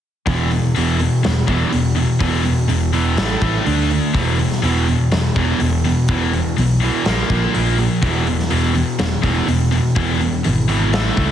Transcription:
0.26 E1 E2 B2 E3, kick, open hi-hat
0.50 E2 B2, open hi-hat
0.75 E1 E2 B2 E3, open hi-hat
0.98 E2 B2, open hi-hat
1.23 E1 E2 B2, snare, open hi-hat
1.47 E1 E2 B2 E3, kick, open hi-hat
1.71 E1 E2 B2, open hi-hat
1.95 E2 B2, open hi-hat
2.19 E1 E2 B2 E3, kick, open hi-hat
2.44 E2 B2, open hi-hat
2.68 E1 E2 B2, open hi-hat
2.93 E2 B2 E3, open hi-hat
3.17 A1 A2 E3 A3, snare, open hi-hat
3.41 A1 A2 E3 A3, kick, open hi-hat
3.66 D2 D3 A3 D4, open hi-hat
3.90 D3 A3, open hi-hat
4.13 E1 E2 B2 E3, kick, open hi-hat
4.38 E2 B2, open hi-hat
4.52 snare
4.62 E1 E2 B2 E3, open hi-hat
4.86 E2 B2, open hi-hat
5.11 E1 E2 B2, snare, open hi-hat
5.36 E1 E2 B2 E3, kick, open hi-hat
5.60 E1 E2 B2, open hi-hat
5.84 E2 B2, open hi-hat
6.08 E1 E2 B2 E3, kick, open hi-hat
6.33 E2 B2, open hi-hat
6.56 B1 E2 B2, open hi-hat
6.80 E2 B2 E3, open hi-hat
7.05 A#1 A#2 F3 A#3, snare, open hi-hat
7.29 A#1 A#2 F3 A#3, kick, open hi-hat
7.53 A#1 A#2 F3 A#3, open hi-hat
7.78 A#2 F3, open hi-hat
8.01 E1 E2 B2 E3, kick, open hi-hat
8.27 E2 B2, open hi-hat
8.39 snare
8.50 E1 E2 B2 E3, open hi-hat
8.74 E2 B2, open hi-hat
8.99 E1 E2 B2, snare, open hi-hat
9.22 E1 E2 B2 E3, kick, open hi-hat
9.47 E1 E2 B2, open hi-hat
9.71 E2 B2, open hi-hat
9.95 E1 E2 B2 E3, kick, open hi-hat
10.20 E2 B2, open hi-hat
10.44 G#1 E2 B2, open hi-hat
10.68 E2 B2 E3, open hi-hat
10.92 A1 A2 E3 A3, snare, open hi-hat
11.16 C#2 A2 E3 A3, kick, open hi-hat

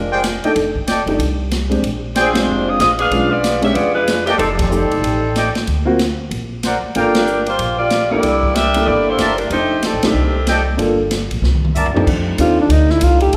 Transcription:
Already playing: F1 G#3 D4 F4 A#4
0.12 G#4 C5 D5 G5
0.24 snare, hi-hat pedal, ride
0.43 A3 D4 D#4 A4 D5 D#5 G5, muted upright bass stroke, ride
0.56 F1, ride
0.76 kick
0.88 A4 D5 D#5 G5, snare, hi-hat pedal, ride
1.06 F#1 A3 D4 D#4 G4, ride
1.19 C2, ride
1.51 snare, hi-hat pedal, ride
1.70 G#3 C4 D4 G4, ride
1.82 A#1, ride
2.16 F3 C4 D4 G#4 C5 D5 G5, snare, hi-hat pedal, ride
2.33 G#3 C4 D4 F4 G4 C5, snare, ride
2.37 G#3 D4
2.47 F1
2.67 C4 F4 G#4 D#5
2.79 A#1 C4 F4 G#4 D#5, snare, hi-hat pedal, ride
2.98 D4 G#4 B4 F5, ride
3.11 B1 G#3 C#4 D4 F4, ride
3.29 B3 F4 G#4 D5
3.44 snare, hi-hat pedal, ride
3.62 G#3 C#4 D4 G4 A#4 E5, ride
3.73 F1 B3 F4 G#4 D5, ride
3.93 G#3 D4 F4 B4
4.08 snare, hi-hat pedal, ride
4.24 E3 A#3 C#4 G4 A4 D5 D#5 G5, snare, ride
4.37 F1 G3 C4 D#4 A4, ride
4.58 G3 C4 D#4 A4, kick, ride
4.70 A3 D#4 G4 D5, hi-hat pedal
4.91 E1, ride
5.01 A1, ride
5.36 A4 D5 D#5 G5, snare, hi-hat pedal, ride
5.55 snare, ride
5.67 D2, ride
5.85 A#3 C4 F4 F#4
5.99 snare, hi-hat pedal, ride
6.31 A#1, ride
6.63 A#4 C5 D5 F#5, snare, hi-hat pedal, ride
6.83 muted upright bass stroke
6.95 G1 A#3 D4 F4 A4 A#4 D5 F5 G5, ride
7.15 G3 D4 F4 A#4, snare, ride
7.27 hi-hat pedal
7.46 A#3 F4 G4 C5, ride
7.59 A#1, ride
7.77 A#3 F4 G4 D5
7.90 snare, hi-hat pedal, ride
8.09 A#3 D4 E4 G4 A4 D5
8.23 C2, ride
8.43 kick
8.53 D4 G4 A#4 E5, snare, hi-hat pedal, ride
8.74 A#3 D4 E4 A4, ride
8.85 G1 A#3 E4 G4 D5
9.07 A#3 E4 G4 C5
9.18 F#1 A#4 D5 E5 A5, snare, hi-hat pedal, ride
9.37 G3 D4 E4 A#4, ride
9.50 F1 A3 D4 D#4 G4 C5, ride
9.54 G4
9.82 G3 C4 D#4 A4, snare, hi-hat pedal, ride
9.93 A1
10.03 C2 D#3 A3 C4 D4 D#4 G4, snare, ride
10.15 C2
10.47 A4 D5 D#5 G5, snare, hi-hat pedal, ride
10.77 G1 A#3 D4 F4 A4, ride
11.11 snare, hi-hat pedal, ride
11.31 A#1, ride
11.42 C2, snare
11.54 mid tom
11.65 mid tom
11.75 A#4 D5 E5 A5, floor tom, hi-hat pedal
11.86 floor tom
11.94 F2 A3 D4 D#4 G4, muted upright bass stroke, floor tom
12.07 F2 A3 D4 D#4 F4, kick, crash
12.38 D#2 A3 C4 D4 D#4 F4 G4, hi-hat pedal, ride
12.61 D4
12.69 D2 D#4, ride
12.90 E4, snare
13.01 C2 F4, hi-hat pedal, ride
13.20 G4, ride
13.33 A1, ride

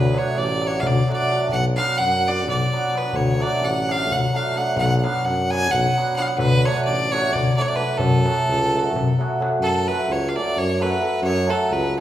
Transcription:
Already playing: D2 B4
0.14 F#3 A3 D4 F#4 C#5, darbuka tek
0.35 A1 D5, darbuka tek
0.49 darbuka tek
0.61 F#3 A3 D4, darbuka tek
0.66 F#4 C#5
0.80 F5, darbuka dum
0.86 D2 D5
1.08 F#3 A3 D4 F#4, darbuka tek
1.12 D5
1.29 F#3 A3 D4 F#4, darbuka tek
1.49 B1 F#5, darbuka dum
1.65 darbuka tek
1.76 F#3 B3 D4 F#4 F5, darbuka tek
1.89 darbuka tek
1.98 F#2 F#5, darbuka tek
2.14 darbuka tek
2.26 F#3 B3 D4 F#4 D5, darbuka tek
2.38 darbuka tek
2.48 B1 D5, darbuka dum
2.62 darbuka tek
2.73 F#3 B3 D4 F#4, darbuka tek
2.84 darbuka tek
2.93 F#3 B3 D4 F#4, darbuka tek
2.97 B4
3.05 darbuka tek
3.13 D2 C#5, darbuka dum
3.40 F#3 A3 D4 F#4 D5, darbuka tek
3.61 A1 F#5, darbuka tek
3.75 darbuka tek
3.89 F#3 A3 D4 F#4 F5, darbuka tek
4.11 D2 F#5, darbuka dum
4.34 F#3 A3 D4 F#4 F5, darbuka tek
4.46 darbuka tek
4.55 F#3 A3 D4 F#4 F#5, darbuka tek
4.75 B1 F#5, darbuka dum
4.98 F#5
5.03 F#3 B3 D4 F#4 F5, darbuka tek
5.24 F#2 F#5, darbuka tek
5.50 F#3 B3 D4 F#4 G#5, darbuka tek
5.71 B1 F#5, darbuka dum
5.97 F#3 B3 D4 F#4, darbuka tek
6.08 darbuka tek
6.16 F#3 B3 D4 F#4 F#5, darbuka tek
6.22 F5
6.27 F#5
6.37 D2 B4, darbuka dum
6.65 F#3 A3 D4 F#4 C#5, darbuka tek
6.84 A1 D5, darbuka tek
7.01 darbuka tek
7.11 F#3 A3 D4 F#4 C#5, darbuka tek
7.33 D2 D5, darbuka dum
7.56 F#3 A3 D4 F#4 D5, darbuka tek
7.62 C#5
7.68 D5, darbuka tek
7.76 F#3 A3 B4
7.80 D4 F#4
7.97 F#2 A4, darbuka dum
8.25 F#3 A3 C#4 F#4, darbuka tek
8.39 darbuka tek
8.47 C#2, darbuka tek
8.73 F#3 A3 C#4 F#4
8.96 F#2, darbuka dum
9.19 F#3 A3 C#4 F#4, darbuka tek
9.40 F#3 A3 C#4 F#4, darbuka tek
9.52 darbuka tek
9.60 F#2 A4
9.88 F#3 A3 C#4 F#4 A4 B4
10.08 C#2 C#5
10.29 F5
10.35 F#3 A3 C#4 F#4 A4 D5
10.57 F#2 C#5
10.80 F#3 A3 C#4 F#4 A4 B4
11.00 F#3 A3 C#4 F#4 A4
11.22 F#2 C#5
11.46 F#3 A3 C#4 F#4 A4
11.71 C#2 B4
11.97 F#3

